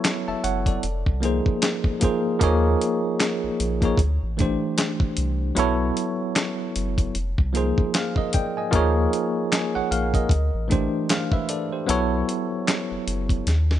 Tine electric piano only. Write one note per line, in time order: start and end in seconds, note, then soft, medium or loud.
0.00 0.69 F#3 loud
0.00 0.70 B3 loud
0.00 0.70 E4 loud
0.00 0.68 A4 loud
0.00 0.44 C#5 loud
0.28 0.44 E5 medium
0.28 0.43 A5 medium
0.44 0.66 C#5 medium
0.44 0.66 F#5 medium
0.67 1.05 A4 soft
0.67 1.05 D5 medium
1.20 1.94 F3 medium
1.20 1.95 A#3 medium
1.20 1.95 D#4 medium
1.20 1.96 G#4 medium
1.25 1.96 C5 medium
2.00 2.37 F3 medium
2.00 2.38 A#3 medium
2.00 2.38 D#4 medium
2.00 2.39 G#4 medium
2.04 2.39 C5 medium
2.39 3.65 F3 loud
2.39 3.66 A#3 loud
2.39 3.66 D#4 loud
2.39 3.67 G#4 loud
2.44 3.67 C#5 loud
3.81 3.98 F3 medium
3.81 3.99 A#3 medium
3.81 3.99 D#4 medium
3.81 4.00 G#4 medium
3.85 4.00 C#5 medium
4.37 5.46 E3 medium
4.37 5.47 A3 medium
4.37 5.47 D4 medium
4.37 5.48 G4 medium
4.42 5.48 C5 medium
5.55 7.01 F#3 loud
5.55 7.01 B3 loud
5.55 7.02 E4 loud
5.55 7.02 A4 loud
5.60 7.03 C#5 loud
7.53 8.26 F3 medium
7.53 8.26 A#3 medium
7.53 8.27 D#4 medium
7.53 8.27 G#4 medium
7.57 7.94 C5 medium
7.95 8.17 C5 medium
7.95 8.16 F5 medium
8.18 8.33 A#4 medium
8.18 8.33 D#5 medium
8.34 8.56 D5 medium
8.34 8.56 G5 medium
8.57 8.95 D#5 medium
8.57 8.94 G#5 medium
8.71 9.97 F3 loud
8.71 9.97 A#3 loud
8.71 9.98 D#4 loud
8.71 9.98 G#4 loud
8.76 9.14 C#5 loud
9.53 9.74 D#5 medium
9.53 9.74 G#5 medium
9.75 9.91 C#5 medium
9.75 9.91 F#5 medium
9.91 10.14 A#4 medium
9.91 10.13 F5 medium
10.15 10.52 A#4 medium
10.15 10.52 D#5 medium
10.68 11.77 E3 medium
10.68 11.78 A3 medium
10.68 11.78 D4 medium
10.68 11.10 G4 medium
10.72 11.09 C5 medium
11.10 11.32 C5 medium
11.10 11.32 F5 medium
11.33 11.49 B4 medium
11.33 11.48 E5 medium
11.49 11.72 A4 medium
11.49 11.71 D5 medium
11.73 12.10 G4 medium
11.73 12.10 C5 medium
11.86 13.32 F#3 loud
11.86 13.32 B3 loud
11.86 13.33 E4 loud
11.86 13.34 A4 loud
11.91 13.34 C#5 loud